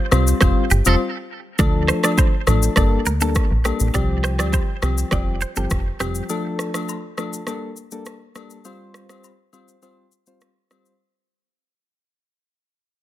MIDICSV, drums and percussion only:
0, 0, Header, 1, 2, 480
1, 0, Start_track
1, 0, Tempo, 588235
1, 1297, Time_signature, 4, 2, 24, 8
1, 10625, End_track
2, 0, Start_track
2, 0, Title_t, "Drums"
2, 94, Note_on_c, 9, 67, 77
2, 98, Note_on_c, 9, 37, 93
2, 100, Note_on_c, 9, 82, 52
2, 175, Note_off_c, 9, 67, 0
2, 180, Note_off_c, 9, 37, 0
2, 181, Note_off_c, 9, 82, 0
2, 223, Note_on_c, 9, 82, 77
2, 305, Note_off_c, 9, 82, 0
2, 331, Note_on_c, 9, 37, 93
2, 337, Note_on_c, 9, 67, 70
2, 337, Note_on_c, 9, 82, 73
2, 338, Note_on_c, 9, 36, 124
2, 413, Note_off_c, 9, 37, 0
2, 419, Note_off_c, 9, 36, 0
2, 419, Note_off_c, 9, 67, 0
2, 419, Note_off_c, 9, 82, 0
2, 577, Note_on_c, 9, 82, 58
2, 658, Note_off_c, 9, 82, 0
2, 697, Note_on_c, 9, 82, 78
2, 704, Note_on_c, 9, 67, 78
2, 778, Note_off_c, 9, 82, 0
2, 785, Note_off_c, 9, 67, 0
2, 1297, Note_on_c, 9, 67, 72
2, 1297, Note_on_c, 9, 82, 70
2, 1298, Note_on_c, 9, 36, 101
2, 1379, Note_off_c, 9, 67, 0
2, 1379, Note_off_c, 9, 82, 0
2, 1380, Note_off_c, 9, 36, 0
2, 1537, Note_on_c, 9, 37, 87
2, 1542, Note_on_c, 9, 82, 48
2, 1619, Note_off_c, 9, 37, 0
2, 1624, Note_off_c, 9, 82, 0
2, 1661, Note_on_c, 9, 37, 90
2, 1665, Note_on_c, 9, 82, 72
2, 1666, Note_on_c, 9, 67, 73
2, 1743, Note_off_c, 9, 37, 0
2, 1747, Note_off_c, 9, 67, 0
2, 1747, Note_off_c, 9, 82, 0
2, 1777, Note_on_c, 9, 36, 86
2, 1779, Note_on_c, 9, 82, 70
2, 1781, Note_on_c, 9, 77, 76
2, 1859, Note_off_c, 9, 36, 0
2, 1861, Note_off_c, 9, 82, 0
2, 1862, Note_off_c, 9, 77, 0
2, 2014, Note_on_c, 9, 67, 71
2, 2018, Note_on_c, 9, 37, 92
2, 2019, Note_on_c, 9, 82, 54
2, 2096, Note_off_c, 9, 67, 0
2, 2099, Note_off_c, 9, 37, 0
2, 2101, Note_off_c, 9, 82, 0
2, 2143, Note_on_c, 9, 82, 71
2, 2225, Note_off_c, 9, 82, 0
2, 2252, Note_on_c, 9, 37, 83
2, 2257, Note_on_c, 9, 82, 68
2, 2258, Note_on_c, 9, 36, 117
2, 2258, Note_on_c, 9, 67, 65
2, 2333, Note_off_c, 9, 37, 0
2, 2339, Note_off_c, 9, 82, 0
2, 2340, Note_off_c, 9, 36, 0
2, 2340, Note_off_c, 9, 67, 0
2, 2496, Note_on_c, 9, 82, 57
2, 2578, Note_off_c, 9, 82, 0
2, 2619, Note_on_c, 9, 82, 74
2, 2700, Note_off_c, 9, 82, 0
2, 2736, Note_on_c, 9, 82, 71
2, 2739, Note_on_c, 9, 36, 92
2, 2741, Note_on_c, 9, 37, 99
2, 2817, Note_off_c, 9, 82, 0
2, 2821, Note_off_c, 9, 36, 0
2, 2823, Note_off_c, 9, 37, 0
2, 2978, Note_on_c, 9, 67, 86
2, 2979, Note_on_c, 9, 37, 90
2, 2980, Note_on_c, 9, 82, 67
2, 3060, Note_off_c, 9, 37, 0
2, 3060, Note_off_c, 9, 67, 0
2, 3061, Note_off_c, 9, 82, 0
2, 3100, Note_on_c, 9, 82, 71
2, 3182, Note_off_c, 9, 82, 0
2, 3217, Note_on_c, 9, 67, 73
2, 3218, Note_on_c, 9, 36, 103
2, 3218, Note_on_c, 9, 82, 73
2, 3299, Note_off_c, 9, 67, 0
2, 3300, Note_off_c, 9, 36, 0
2, 3300, Note_off_c, 9, 82, 0
2, 3458, Note_on_c, 9, 37, 84
2, 3463, Note_on_c, 9, 82, 47
2, 3539, Note_off_c, 9, 37, 0
2, 3545, Note_off_c, 9, 82, 0
2, 3582, Note_on_c, 9, 37, 89
2, 3586, Note_on_c, 9, 82, 68
2, 3587, Note_on_c, 9, 67, 71
2, 3664, Note_off_c, 9, 37, 0
2, 3668, Note_off_c, 9, 67, 0
2, 3668, Note_off_c, 9, 82, 0
2, 3697, Note_on_c, 9, 36, 91
2, 3700, Note_on_c, 9, 77, 78
2, 3700, Note_on_c, 9, 82, 69
2, 3779, Note_off_c, 9, 36, 0
2, 3781, Note_off_c, 9, 82, 0
2, 3782, Note_off_c, 9, 77, 0
2, 3934, Note_on_c, 9, 67, 74
2, 3938, Note_on_c, 9, 37, 95
2, 3939, Note_on_c, 9, 82, 53
2, 4016, Note_off_c, 9, 67, 0
2, 4019, Note_off_c, 9, 37, 0
2, 4021, Note_off_c, 9, 82, 0
2, 4063, Note_on_c, 9, 82, 75
2, 4144, Note_off_c, 9, 82, 0
2, 4171, Note_on_c, 9, 37, 83
2, 4177, Note_on_c, 9, 67, 65
2, 4177, Note_on_c, 9, 82, 68
2, 4178, Note_on_c, 9, 36, 118
2, 4253, Note_off_c, 9, 37, 0
2, 4258, Note_off_c, 9, 82, 0
2, 4259, Note_off_c, 9, 36, 0
2, 4259, Note_off_c, 9, 67, 0
2, 4416, Note_on_c, 9, 82, 54
2, 4498, Note_off_c, 9, 82, 0
2, 4538, Note_on_c, 9, 82, 74
2, 4619, Note_off_c, 9, 82, 0
2, 4656, Note_on_c, 9, 82, 72
2, 4659, Note_on_c, 9, 36, 94
2, 4661, Note_on_c, 9, 37, 98
2, 4737, Note_off_c, 9, 82, 0
2, 4740, Note_off_c, 9, 36, 0
2, 4743, Note_off_c, 9, 37, 0
2, 4898, Note_on_c, 9, 37, 91
2, 4898, Note_on_c, 9, 67, 86
2, 4899, Note_on_c, 9, 82, 66
2, 4980, Note_off_c, 9, 37, 0
2, 4980, Note_off_c, 9, 67, 0
2, 4981, Note_off_c, 9, 82, 0
2, 5018, Note_on_c, 9, 82, 74
2, 5100, Note_off_c, 9, 82, 0
2, 5137, Note_on_c, 9, 67, 71
2, 5137, Note_on_c, 9, 82, 75
2, 5218, Note_off_c, 9, 82, 0
2, 5219, Note_off_c, 9, 67, 0
2, 5377, Note_on_c, 9, 37, 83
2, 5383, Note_on_c, 9, 82, 49
2, 5459, Note_off_c, 9, 37, 0
2, 5464, Note_off_c, 9, 82, 0
2, 5502, Note_on_c, 9, 37, 86
2, 5506, Note_on_c, 9, 82, 68
2, 5507, Note_on_c, 9, 67, 69
2, 5584, Note_off_c, 9, 37, 0
2, 5588, Note_off_c, 9, 67, 0
2, 5588, Note_off_c, 9, 82, 0
2, 5621, Note_on_c, 9, 77, 73
2, 5621, Note_on_c, 9, 82, 65
2, 5702, Note_off_c, 9, 82, 0
2, 5703, Note_off_c, 9, 77, 0
2, 5855, Note_on_c, 9, 67, 72
2, 5858, Note_on_c, 9, 37, 92
2, 5860, Note_on_c, 9, 82, 52
2, 5936, Note_off_c, 9, 67, 0
2, 5940, Note_off_c, 9, 37, 0
2, 5941, Note_off_c, 9, 82, 0
2, 5984, Note_on_c, 9, 82, 73
2, 6066, Note_off_c, 9, 82, 0
2, 6093, Note_on_c, 9, 37, 84
2, 6098, Note_on_c, 9, 67, 63
2, 6099, Note_on_c, 9, 82, 66
2, 6175, Note_off_c, 9, 37, 0
2, 6180, Note_off_c, 9, 67, 0
2, 6180, Note_off_c, 9, 82, 0
2, 6337, Note_on_c, 9, 82, 52
2, 6419, Note_off_c, 9, 82, 0
2, 6458, Note_on_c, 9, 82, 73
2, 6540, Note_off_c, 9, 82, 0
2, 6576, Note_on_c, 9, 82, 73
2, 6581, Note_on_c, 9, 37, 89
2, 6657, Note_off_c, 9, 82, 0
2, 6663, Note_off_c, 9, 37, 0
2, 6818, Note_on_c, 9, 67, 83
2, 6819, Note_on_c, 9, 37, 88
2, 6820, Note_on_c, 9, 82, 65
2, 6900, Note_off_c, 9, 37, 0
2, 6900, Note_off_c, 9, 67, 0
2, 6901, Note_off_c, 9, 82, 0
2, 6939, Note_on_c, 9, 82, 70
2, 7021, Note_off_c, 9, 82, 0
2, 7058, Note_on_c, 9, 67, 71
2, 7058, Note_on_c, 9, 82, 69
2, 7139, Note_off_c, 9, 82, 0
2, 7140, Note_off_c, 9, 67, 0
2, 7297, Note_on_c, 9, 37, 83
2, 7303, Note_on_c, 9, 82, 45
2, 7379, Note_off_c, 9, 37, 0
2, 7384, Note_off_c, 9, 82, 0
2, 7421, Note_on_c, 9, 37, 91
2, 7425, Note_on_c, 9, 82, 70
2, 7427, Note_on_c, 9, 67, 72
2, 7503, Note_off_c, 9, 37, 0
2, 7507, Note_off_c, 9, 82, 0
2, 7508, Note_off_c, 9, 67, 0
2, 7540, Note_on_c, 9, 82, 69
2, 7541, Note_on_c, 9, 77, 74
2, 7621, Note_off_c, 9, 82, 0
2, 7623, Note_off_c, 9, 77, 0
2, 7775, Note_on_c, 9, 67, 74
2, 7779, Note_on_c, 9, 82, 51
2, 7857, Note_off_c, 9, 67, 0
2, 7861, Note_off_c, 9, 82, 0
2, 7902, Note_on_c, 9, 82, 72
2, 7984, Note_off_c, 9, 82, 0
2, 8017, Note_on_c, 9, 82, 66
2, 8018, Note_on_c, 9, 67, 64
2, 8099, Note_off_c, 9, 82, 0
2, 8100, Note_off_c, 9, 67, 0
2, 8256, Note_on_c, 9, 82, 51
2, 8338, Note_off_c, 9, 82, 0
2, 8378, Note_on_c, 9, 82, 69
2, 8459, Note_off_c, 9, 82, 0
2, 8495, Note_on_c, 9, 82, 67
2, 8501, Note_on_c, 9, 37, 93
2, 8576, Note_off_c, 9, 82, 0
2, 8582, Note_off_c, 9, 37, 0
2, 8738, Note_on_c, 9, 37, 85
2, 8738, Note_on_c, 9, 67, 81
2, 8739, Note_on_c, 9, 82, 61
2, 8819, Note_off_c, 9, 67, 0
2, 8820, Note_off_c, 9, 37, 0
2, 8821, Note_off_c, 9, 82, 0
2, 8859, Note_on_c, 9, 82, 71
2, 8941, Note_off_c, 9, 82, 0
2, 10625, End_track
0, 0, End_of_file